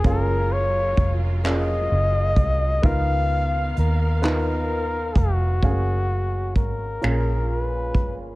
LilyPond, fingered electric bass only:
\new Staff \with { instrumentName = "Fingered electric bass" } { \clef bass \time 6/8 \key fis \major \tempo 4. = 43 fis,,4 eis,,4 fis,,8 bis,,8 | cis,4 dis,4. eis,,8 | fis,,4 gis,,8 ais,,4 g,,8 | }